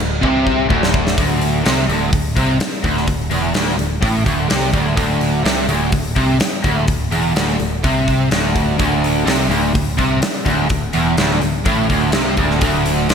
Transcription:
0.00 picked electric bass D1, overdriven electric guitar D2, crash
0.22 picked electric bass C2, overdriven electric guitar C3, kick
0.47 kick
0.69 picked electric bass D1, overdriven electric guitar D2, kick
0.83 snare
0.94 kick
1.07 snare
1.17 picked electric bass D1, overdriven electric guitar D2, kick, open hi-hat
1.42 open hi-hat
1.65 picked electric bass C2, overdriven electric guitar C3, snare, open hi-hat
1.88 picked electric bass D1, overdriven electric guitar D2, open hi-hat
2.12 picked electric bass D1, overdriven electric guitar D2, kick, open hi-hat
2.36 picked electric bass C2, overdriven electric guitar C3, kick, open hi-hat
2.60 muted overdriven electric guitar stroke, muted picked electric bass stroke, snare, open hi-hat
2.84 picked electric bass D1, overdriven electric guitar D2, kick, open hi-hat
2.97 snare
3.08 picked electric bass D1, overdriven electric guitar D2, kick, open hi-hat
3.30 picked electric bass E1, overdriven electric guitar E2, open hi-hat
3.54 picked electric bass D1, overdriven electric guitar D2, snare, open hi-hat
3.68 snare
3.77 picked electric bass D1, overdriven electric guitar D2, open hi-hat
4.01 picked electric bass A1, overdriven electric guitar A2, kick, open hi-hat
4.25 picked electric bass D1, overdriven electric guitar D2, kick, open hi-hat
4.49 picked electric bass C2, overdriven electric guitar C3, snare, open hi-hat
4.73 picked electric bass D1, overdriven electric guitar D2, kick, open hi-hat
4.97 picked electric bass D1, overdriven electric guitar D2, kick, open hi-hat
5.21 open hi-hat
5.44 picked electric bass C2, overdriven electric guitar C3, snare, open hi-hat
5.68 picked electric bass D1, overdriven electric guitar D2, open hi-hat
5.92 picked electric bass D1, overdriven electric guitar D2, kick, open hi-hat
6.16 picked electric bass C2, overdriven electric guitar C3, kick, open hi-hat
6.40 muted overdriven electric guitar stroke, muted picked electric bass stroke, snare, open hi-hat
6.64 picked electric bass D1, overdriven electric guitar D2, kick, open hi-hat
6.88 picked electric bass D1, overdriven electric guitar D2, kick, open hi-hat
7.11 picked electric bass E1, overdriven electric guitar E2, open hi-hat
7.35 picked electric bass D1, overdriven electric guitar D2, snare, open hi-hat
7.49 snare
7.60 picked electric bass D1, overdriven electric guitar D2, open hi-hat
7.84 picked electric bass C2, overdriven electric guitar C3, kick, open hi-hat
8.08 kick, open hi-hat
8.31 picked electric bass D1, overdriven electric guitar D2, snare, open hi-hat
8.56 kick, open hi-hat
8.79 picked electric bass D1, overdriven electric guitar D2, kick, open hi-hat
9.04 open hi-hat
9.26 picked electric bass C2, overdriven electric guitar C3, snare, open hi-hat
9.49 picked electric bass D1, overdriven electric guitar D2, open hi-hat
9.74 picked electric bass D1, overdriven electric guitar D2, kick, open hi-hat
9.98 picked electric bass C2, overdriven electric guitar C3, kick, open hi-hat
10.22 muted distorted electric guitar stroke, muted overdriven electric guitar stroke, muted picked electric bass stroke, snare, open hi-hat
10.45 picked electric bass D1, overdriven electric guitar D2, kick, open hi-hat
10.70 picked electric bass D1, overdriven electric guitar D2, kick, open hi-hat
10.93 picked electric bass E1, overdriven electric guitar E2, open hi-hat
11.17 picked electric bass D1, overdriven electric guitar D2, snare, open hi-hat
11.31 snare
11.42 picked electric bass D1, overdriven electric guitar D2, open hi-hat
11.65 picked electric bass A1, overdriven electric guitar A2, kick, open hi-hat
11.90 picked electric bass D1, overdriven electric guitar D2, kick, open hi-hat
12.12 picked electric bass C2, overdriven electric guitar C3, snare, open hi-hat
12.37 picked electric bass D1, overdriven electric guitar D2, kick, open hi-hat
12.50 snare
12.61 picked electric bass D1, overdriven electric guitar D2, kick, open hi-hat
12.86 open hi-hat
13.09 picked electric bass C2, overdriven electric guitar C3, snare, open hi-hat

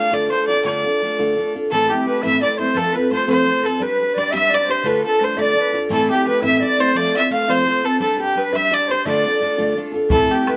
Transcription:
Already playing: steel-string acoustic guitar A3 D4 F4 A4, fiddle F5
0.11 steel-string acoustic guitar D3 A3 D4 F4 A4, fiddle D5
0.30 steel-string acoustic guitar A3 D4 F4 A4, fiddle C5
0.48 steel-string acoustic guitar D4 F4 A4, fiddle D5
0.64 steel-string acoustic guitar D3 A3 D4 F4 A4, fiddle D5
0.84 steel-string acoustic guitar D4 F4 A4
1.02 steel-string acoustic guitar A3 D4 F4 A4
1.19 steel-string acoustic guitar D3 A3 D4 F4 A4
1.37 steel-string acoustic guitar A3 D4 F4 A4
1.54 steel-string acoustic guitar D4 F4 A4
1.70 steel-string acoustic guitar A2 E3 A3 C4 E4 B4, flute A4, fiddle A4
1.88 steel-string acoustic guitar C4 E4 B4, flute G4, fiddle G4
1.93 steel-string acoustic guitar A3
2.06 steel-string acoustic guitar A3 C4 E4 B4, fiddle B4
2.22 steel-string acoustic guitar A2 E3 A3 C4 E4 B4, flute E5, fiddle E5
2.40 steel-string acoustic guitar A3 C4 E4 B4, flute D5, fiddle D5
2.57 steel-string acoustic guitar A3 C4 E4 B4, flute C5, fiddle C5
2.73 steel-string acoustic guitar F3 A3 C4 F4 A4, flute A4
2.77 fiddle A4
2.92 steel-string acoustic guitar C4 F4 A4, flute B4, fiddle B4
3.10 steel-string acoustic guitar A3 C4 F4 A4, flute C5, fiddle C5
3.27 steel-string acoustic guitar F3 A3 C4 F4 A4, flute C5, fiddle C5
3.47 steel-string acoustic guitar A3 C4 F4 A4
3.63 steel-string acoustic guitar C4 F4 A4, flute A4, fiddle A4
3.79 steel-string acoustic guitar G3 D4 G4 B4, fiddle B4, flute D5
3.83 flute B4
3.98 steel-string acoustic guitar D4 G4 B4
4.14 steel-string acoustic guitar G3 D4, flute D5
4.18 steel-string acoustic guitar G4 B4, fiddle D5
4.31 steel-string acoustic guitar G3 D4 G4 B4, flute E5, fiddle E5
4.49 steel-string acoustic guitar G3 D4 G4, flute D5
4.54 steel-string acoustic guitar B4, fiddle D5
4.65 steel-string acoustic guitar B4, flute C5
4.69 steel-string acoustic guitar D4 G4, fiddle C5
4.82 steel-string acoustic guitar D3 A3 D4 F4 A4, flute B4
4.87 fiddle B4
5.02 steel-string acoustic guitar D4 F4 A4, flute A4, fiddle A4
5.20 steel-string acoustic guitar A3 D4 F4 A4, flute C5
5.24 fiddle C5
5.36 steel-string acoustic guitar D3 A3 D4 F4 A4, flute E5
5.41 fiddle D5, flute D5
5.55 steel-string acoustic guitar A3 D4 F4 A4
5.60 flute B4
5.73 steel-string acoustic guitar D4 F4 A4
5.89 steel-string acoustic guitar A2 E3 A3 C4 E4 B4, flute A4, fiddle A4
6.09 steel-string acoustic guitar A3 C4 E4 B4, flute G4, fiddle G4
6.26 steel-string acoustic guitar A3 C4 E4 B4, fiddle B4
6.41 steel-string acoustic guitar A2 E3 A3 C4 E4 B4, flute E5, fiddle E5
6.57 flute D5, fiddle E5
6.62 steel-string acoustic guitar A3 C4 E4 B4, fiddle D5
6.78 steel-string acoustic guitar A3 C4 E4 B4, fiddle C5
6.95 steel-string acoustic guitar F3 A3 C4 F4 C5, flute D5, fiddle D5
7.14 steel-string acoustic guitar C4 F4 C5, fiddle E5
7.30 steel-string acoustic guitar A3 C4 F4 C5, flute F5, fiddle F5
7.48 steel-string acoustic guitar F3 A3 C4 F4 C5, fiddle C5, flute D5
7.53 flute C5
7.65 steel-string acoustic guitar A3 C4 F4 C5
7.81 steel-string acoustic guitar C4 F4 C5, flute A4, fiddle A4
8.00 steel-string acoustic guitar G3 D4 G4 B4, flute A4, fiddle A4
8.18 steel-string acoustic guitar D4 G4 B4, fiddle G4
8.35 steel-string acoustic guitar G3 D4 G4 B4, flute B4, fiddle B4
8.52 steel-string acoustic guitar G3 D4 G4 B4, flute E5, fiddle E5
8.71 steel-string acoustic guitar G3 D4 G4 B4, flute D5, fiddle D5
8.88 steel-string acoustic guitar G4 B4, flute C5, fiddle C5
8.93 steel-string acoustic guitar D4
9.05 steel-string acoustic guitar D3 A3 D4 F4 A4, fiddle D5, flute E5
9.09 flute D5
9.24 steel-string acoustic guitar D4 F4 A4
9.40 steel-string acoustic guitar A3 D4 F4 A4
9.58 steel-string acoustic guitar D3 A3 D4 F4 A4
9.75 steel-string acoustic guitar A3 D4 F4 A4
9.92 steel-string acoustic guitar D4 F4 A4
10.09 steel-string acoustic guitar A2 E3 A3 C4 E4 B4, flute A4, fiddle A4, bodhran
10.29 steel-string acoustic guitar A3 C4 E4 B4, flute G4, fiddle G4, bodhran
10.46 steel-string acoustic guitar A3 C4 E4 B4, flute B4, fiddle B4, bodhran

